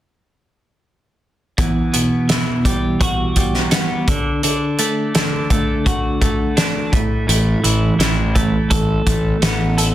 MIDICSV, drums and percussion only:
0, 0, Header, 1, 2, 480
1, 0, Start_track
1, 0, Key_signature, 1, "minor"
1, 0, Tempo, 713436
1, 1066, Time_signature, 4, 2, 24, 8
1, 6692, End_track
2, 0, Start_track
2, 0, Title_t, "Drums"
2, 1064, Note_on_c, 9, 36, 76
2, 1064, Note_on_c, 9, 42, 59
2, 1131, Note_off_c, 9, 36, 0
2, 1131, Note_off_c, 9, 42, 0
2, 1303, Note_on_c, 9, 42, 49
2, 1370, Note_off_c, 9, 42, 0
2, 1541, Note_on_c, 9, 42, 61
2, 1546, Note_on_c, 9, 38, 89
2, 1609, Note_off_c, 9, 42, 0
2, 1613, Note_off_c, 9, 38, 0
2, 1783, Note_on_c, 9, 36, 64
2, 1786, Note_on_c, 9, 42, 56
2, 1851, Note_off_c, 9, 36, 0
2, 1854, Note_off_c, 9, 42, 0
2, 2023, Note_on_c, 9, 36, 93
2, 2023, Note_on_c, 9, 42, 68
2, 2090, Note_off_c, 9, 36, 0
2, 2091, Note_off_c, 9, 42, 0
2, 2260, Note_on_c, 9, 42, 53
2, 2262, Note_on_c, 9, 36, 60
2, 2327, Note_off_c, 9, 42, 0
2, 2330, Note_off_c, 9, 36, 0
2, 2382, Note_on_c, 9, 38, 24
2, 2450, Note_off_c, 9, 38, 0
2, 2497, Note_on_c, 9, 42, 70
2, 2502, Note_on_c, 9, 38, 84
2, 2565, Note_off_c, 9, 42, 0
2, 2569, Note_off_c, 9, 38, 0
2, 2743, Note_on_c, 9, 36, 89
2, 2744, Note_on_c, 9, 42, 55
2, 2810, Note_off_c, 9, 36, 0
2, 2812, Note_off_c, 9, 42, 0
2, 2982, Note_on_c, 9, 42, 60
2, 3050, Note_off_c, 9, 42, 0
2, 3220, Note_on_c, 9, 42, 52
2, 3288, Note_off_c, 9, 42, 0
2, 3463, Note_on_c, 9, 42, 69
2, 3468, Note_on_c, 9, 38, 88
2, 3530, Note_off_c, 9, 42, 0
2, 3535, Note_off_c, 9, 38, 0
2, 3703, Note_on_c, 9, 36, 68
2, 3703, Note_on_c, 9, 42, 48
2, 3770, Note_off_c, 9, 36, 0
2, 3770, Note_off_c, 9, 42, 0
2, 3942, Note_on_c, 9, 36, 90
2, 3945, Note_on_c, 9, 42, 64
2, 4010, Note_off_c, 9, 36, 0
2, 4013, Note_off_c, 9, 42, 0
2, 4182, Note_on_c, 9, 36, 63
2, 4182, Note_on_c, 9, 42, 47
2, 4249, Note_off_c, 9, 36, 0
2, 4250, Note_off_c, 9, 42, 0
2, 4421, Note_on_c, 9, 42, 61
2, 4425, Note_on_c, 9, 38, 88
2, 4488, Note_off_c, 9, 42, 0
2, 4492, Note_off_c, 9, 38, 0
2, 4661, Note_on_c, 9, 36, 89
2, 4663, Note_on_c, 9, 42, 51
2, 4729, Note_off_c, 9, 36, 0
2, 4730, Note_off_c, 9, 42, 0
2, 4905, Note_on_c, 9, 42, 61
2, 4972, Note_off_c, 9, 42, 0
2, 5142, Note_on_c, 9, 42, 47
2, 5210, Note_off_c, 9, 42, 0
2, 5383, Note_on_c, 9, 42, 66
2, 5388, Note_on_c, 9, 38, 87
2, 5450, Note_off_c, 9, 42, 0
2, 5455, Note_off_c, 9, 38, 0
2, 5621, Note_on_c, 9, 36, 63
2, 5622, Note_on_c, 9, 42, 49
2, 5689, Note_off_c, 9, 36, 0
2, 5689, Note_off_c, 9, 42, 0
2, 5858, Note_on_c, 9, 42, 70
2, 5860, Note_on_c, 9, 36, 89
2, 5925, Note_off_c, 9, 42, 0
2, 5927, Note_off_c, 9, 36, 0
2, 6100, Note_on_c, 9, 36, 66
2, 6101, Note_on_c, 9, 42, 55
2, 6167, Note_off_c, 9, 36, 0
2, 6168, Note_off_c, 9, 42, 0
2, 6339, Note_on_c, 9, 42, 67
2, 6343, Note_on_c, 9, 38, 90
2, 6406, Note_off_c, 9, 42, 0
2, 6411, Note_off_c, 9, 38, 0
2, 6582, Note_on_c, 9, 42, 61
2, 6649, Note_off_c, 9, 42, 0
2, 6692, End_track
0, 0, End_of_file